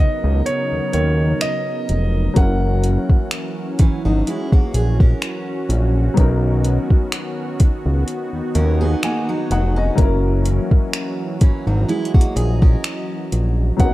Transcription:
0.00 2.32 C#3 medium
0.00 2.31 F#3 medium
0.00 6.13 F#3 medium
0.00 2.32 B3 medium
0.00 2.32 C#4 medium
0.00 2.32 D#4 medium
0.00 2.33 D#4 medium
0.00 2.32 A#4 medium
0.00 2.34 A#4 medium
0.00 0.47 D#5 medium
0.24 0.42 C#2 medium
0.46 0.92 C#5 medium
0.46 closed hi-hat medium
0.72 0.81 D#2 soft
0.93 1.34 D#2 medium
0.93 1.38 C#5 medium
0.93 closed hi-hat medium
1.41 2.33 D#5 medium
1.41 finger snap loud
1.41 closed hi-hat medium
1.89 2.29 F1 medium
1.89 closed hi-hat medium
2.34 2.98 F#1 loud
2.34 6.13 E3 medium
2.34 6.12 F#3 medium
2.34 6.13 A#3 medium
2.34 8.04 C#4 medium
2.34 13.94 F#4 medium
2.34 3.28 F#5 medium
2.34 kick loud
2.34 closed hi-hat medium
2.38 6.14 C#4 medium
2.38 6.15 E4 medium
2.38 6.16 A#4 medium
2.84 closed hi-hat medium
3.10 3.18 G#1 soft
3.10 kick medium
3.31 finger snap loud
3.31 closed hi-hat medium
3.79 3.90 G#1 soft
3.79 4.04 E3 medium
3.79 4.04 C#4 medium
3.79 kick medium
3.79 closed hi-hat medium
4.05 4.23 G#1 medium
4.05 4.26 F#3 medium
4.05 4.26 D#4 medium
4.27 4.52 G#3 medium
4.27 4.51 E4 medium
4.27 closed hi-hat medium
4.52 4.61 A#1 soft
4.52 4.74 A#3 medium
4.52 4.73 F#4 medium
4.52 kick medium
4.74 5.14 A#1 medium
4.74 4.99 G#4 medium
4.74 closed hi-hat medium
5.00 6.14 C#4 medium
5.00 6.13 A#4 medium
5.00 kick medium
5.22 finger snap loud
5.22 closed hi-hat medium
5.69 6.09 A#1 medium
5.69 closed hi-hat medium
6.14 6.79 B1 loud
6.14 9.95 D#3 medium
6.14 9.93 F#3 medium
6.14 9.93 B3 medium
6.14 9.95 B3 medium
6.14 9.94 C#4 medium
6.14 kick loud
6.14 closed hi-hat medium
6.19 9.95 D#4 medium
6.19 9.96 A#4 medium
6.65 closed hi-hat medium
6.90 6.99 C#2 soft
6.90 kick medium
7.12 finger snap loud
7.12 closed hi-hat medium
7.60 7.70 C#2 soft
7.60 kick medium
7.60 closed hi-hat medium
7.85 8.04 C#2 medium
8.08 9.97 D#4 medium
8.08 closed hi-hat medium
8.33 8.42 D#2 soft
8.55 8.95 D#2 loud
8.55 8.80 C#4 medium
8.55 8.80 A#4 medium
8.55 closed hi-hat medium
8.81 9.02 B3 medium
8.81 9.02 G#4 medium
9.03 9.28 A#3 medium
9.03 9.27 F#4 medium
9.03 9.49 G#5 medium
9.03 finger snap loud
9.03 closed hi-hat medium
9.29 9.50 F#3 medium
9.29 9.50 D#4 medium
9.51 9.91 F1 medium
9.51 9.75 F#3 medium
9.51 9.75 D#4 medium
9.51 9.76 F#5 medium
9.51 closed hi-hat medium
9.76 10.22 C#4 medium
9.76 10.22 D#5 medium
9.95 10.60 F#1 loud
9.95 13.75 E3 medium
9.95 13.74 F#3 medium
9.95 13.75 F#3 medium
9.95 13.75 A#3 medium
9.95 11.87 C#4 medium
9.95 13.75 C#4 medium
9.95 kick loud
9.95 closed hi-hat medium
10.01 13.76 E4 medium
10.01 13.77 A#4 medium
10.45 closed hi-hat medium
10.71 10.80 G#1 soft
10.71 kick medium
10.93 finger snap loud
10.93 closed hi-hat medium
11.41 11.52 G#1 soft
11.41 11.66 E3 medium
11.41 11.66 C#4 medium
11.41 kick medium
11.41 closed hi-hat medium
11.67 11.85 G#1 medium
11.67 11.88 F#3 medium
11.67 11.88 D#4 medium
11.88 12.13 G#3 medium
11.88 12.13 E4 medium
11.88 13.78 D#5 medium
11.88 closed hi-hat soft
12.05 closed hi-hat medium
12.14 12.23 A#1 soft
12.14 12.35 A#3 medium
12.14 12.35 F#4 medium
12.14 kick medium
12.21 closed hi-hat medium
12.36 12.76 A#1 medium
12.36 12.61 G#4 medium
12.36 closed hi-hat medium
12.62 13.75 C#4 medium
12.62 13.75 A#4 medium
12.62 kick loud
12.84 finger snap loud
12.84 closed hi-hat medium
13.32 13.72 A#1 medium
13.32 closed hi-hat medium
13.77 13.94 B1 loud
13.77 13.94 B2 medium
13.77 13.94 D#3 medium
13.77 13.94 F#3 medium
13.77 13.94 B3 medium
13.77 13.94 C#4 medium
13.77 13.94 F#5 medium
13.77 kick medium
13.77 closed hi-hat medium
13.82 13.94 A#3 medium
13.82 13.94 D#4 medium

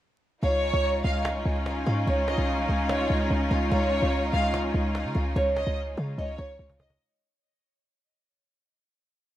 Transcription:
0.43 0.72 C#2 loud
0.43 6.96 G#3 medium
0.43 6.96 C#4 medium
0.43 6.96 D#4 medium
0.43 6.96 F4 medium
0.43 1.01 C#5 loud
0.43 1.01 F5 loud
0.73 1.03 C#2 loud
1.04 1.37 C#2 loud
1.04 1.83 D#5 medium
1.04 1.24 F5 medium
1.25 cajon slap loud
1.35 1.45 C2 loud
1.35 cajon slap soft
1.46 1.85 C#2 loud
1.66 cajon slap medium
1.86 2.06 G#2 loud
1.86 2.03 F5 medium
2.07 2.37 C#2 loud
2.07 2.65 C#5 loud
2.28 2.47 D#5 medium
2.28 cajon slap loud
2.38 2.68 C2 loud
2.69 3.08 C#2 loud
2.69 3.47 D#5 medium
2.89 3.28 C#5 medium
2.89 cajon slap loud
3.00 cajon slap soft
3.10 3.30 C#2 loud
3.30 3.50 C#2 loud
3.51 3.71 C#2 loud
3.51 3.67 F5 medium
3.71 4.01 C#2 loud
3.71 4.29 C#5 loud
3.71 4.29 F5 loud
4.02 4.32 C#2 loud
4.33 4.73 C#2 loud
4.33 5.12 D#5 medium
4.33 4.53 F5 medium
4.54 cajon slap loud
4.74 5.07 C#2 loud
4.95 cajon slap loud
5.05 5.15 C#3 loud
5.15 5.35 C#2 loud
5.15 5.32 F5 medium
5.36 5.66 C#2 loud
5.36 5.94 C#5 loud
5.56 5.76 D#5 medium
5.56 cajon slap loud
5.67 5.96 C#2 loud
5.87 cajon slap soft
5.97 6.17 C#3 loud
5.97 6.14 F5 medium
6.18 6.38 C#2 loud
6.18 6.76 C#5 medium
6.18 6.35 D#5 medium
6.38 6.58 C#2 loud
6.38 6.96 C#5 medium
6.59 6.99 C#2 loud
6.69 cajon bass medium
6.80 6.99 D#5 medium
6.80 cajon bass loud
6.90 cajon bass loud

